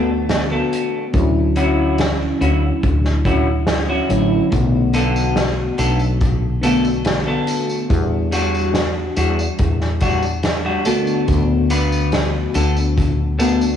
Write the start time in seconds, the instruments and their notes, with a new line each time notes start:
Already playing: fretless electric bass D2, fm electric piano D3 A3 B3 F#4
0.29 muted clean electric guitar stroke, snare, closed hi-hat
0.51 clean electric guitar B3 D4 A4
0.73 closed hi-hat
1.13 fretless electric bass D2, fm electric piano D3 F#3 C#4 E4, kick, closed hi-hat
1.56 clean electric guitar C#4 E4 F#4, closed hi-hat
1.98 snare, closed hi-hat
2.41 fretless electric bass D2, clean electric guitar C#4 E4 F#4, closed hi-hat
2.83 fretless electric bass D2, muted clean electric guitar stroke, kick, closed hi-hat
3.04 snare
3.25 clean electric guitar C#4 E4 F#4, kick, closed hi-hat
3.67 muted clean electric guitar stroke, snare, closed hi-hat
3.89 clean electric guitar C#4 E4 F#4
4.09 fretless electric bass A1, fm electric piano D3 F#3 C#4 E4, closed hi-hat
4.50 fretless electric bass B1, fm electric piano D3 A3 B3 F#4, kick, closed hi-hat, tambourine
4.93 clean electric guitar B3 D4 A4, closed hi-hat, tambourine
5.16 tambourine
5.36 snare, closed hi-hat, tambourine
5.78 fretless electric bass B1, clean electric guitar B3 D4 A4, closed hi-hat, tambourine
6.00 tambourine
6.21 muted clean electric guitar stroke, kick, closed hi-hat, tambourine
6.61 fm electric piano D3 A3 B3 F#4, clean electric guitar B3 D4 A4, closed hi-hat, tambourine
6.85 tambourine
7.04 muted clean electric guitar stroke, snare, closed hi-hat, tambourine
7.27 clean electric guitar B3 D4 A4
7.47 closed hi-hat, tambourine
7.70 tambourine
7.89 fretless electric bass E2, fm electric piano E3 G3 D4 F#4, kick, closed hi-hat, tambourine
8.32 clean electric guitar G3 D4 F#4, closed hi-hat, tambourine
8.54 tambourine
8.74 snare, closed hi-hat, tambourine
9.16 fretless electric bass E2, clean electric guitar G3 D4 F#4, closed hi-hat, tambourine
9.39 tambourine
9.58 fretless electric bass E2, muted clean electric guitar stroke, kick, closed hi-hat, tambourine
9.81 snare
10.00 clean electric guitar G3 D4 F#4, kick, closed hi-hat, tambourine
10.23 tambourine
10.43 muted clean electric guitar stroke, snare, closed hi-hat, tambourine
10.65 clean electric guitar G3 D4 F#4
10.85 fm electric piano D3 A3 B3 F#4, clean electric guitar B3 D4 A4, closed hi-hat, tambourine
11.07 tambourine
11.27 fretless electric bass D2, fm electric piano D3 A3 B3 F#4, kick, closed hi-hat, tambourine
11.70 clean electric guitar B3 D4 B4, closed hi-hat, tambourine
11.92 tambourine
12.12 snare, closed hi-hat, tambourine
12.54 fretless electric bass D2, clean electric guitar B3 D4 A4, closed hi-hat, tambourine
12.76 tambourine
12.97 muted clean electric guitar stroke, kick, closed hi-hat, tambourine
13.38 fm electric piano D3 A3 B3 F#4, clean electric guitar B3 D4 A4, closed hi-hat, tambourine
13.61 tambourine